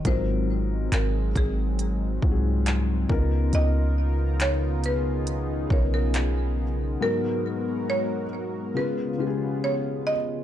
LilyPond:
<<
  \new Staff \with { instrumentName = "Marimba" } { \time 4/4 \key des \mixolydian \tempo 4 = 69 c''4 bes'8 aes'2 r8 | ees''4 des''8 ces''4 des''16 bes'8. r8 | bes'4 des''4 ces''4 des''8 ees''8 | }
  \new Staff \with { instrumentName = "Felt piano" } { \time 4/4 \key des \mixolydian <aes, ges c' f' bes'>4. r4 <aes, ges c' f' ges' aes'>4 <des ces' ees' f' bes'>8~ | <des ces' ees' f' bes'>4 r4. <des ces' ees' f' bes'>4 r8 | <aes, ges ces' bes'>4. r8 <des aes f' ces''>8 <des aes f' g' aes'>4 r8 | }
  \new Staff \with { instrumentName = "Analog synth pad" } { \time 4/4 \key des \mixolydian << { ges2.~ ges8 bes'8~ | bes'4. aes'2~ aes'8 | ces'2 f'2 | } \\ { <aes c'>2.~ <aes c'>8 <des ces' ees' f'>8~ | <des ces' ees' f'>1 | <aes ges' bes'>2 <des ces'>2 | } >> }
  \new Staff \with { instrumentName = "808-style bass" } { \clef bass \time 4/4 \key des \mixolydian aes,,4 aes,,8 aes,,4 c,4 des,8 | des,2~ des,8 ces,4. | r1 | }
  \new DrumStaff \with { instrumentName = "Drums" } \drummode { \time 4/4 <hh bd>4 <hc hh>8 <hh bd>8 hh8 bd8 <hc hh>8 bd8 | hh4 <hc hh>8 hh8 hh8 bd8 <hc hh>4 | r4 r4 r4 r4 | }
>>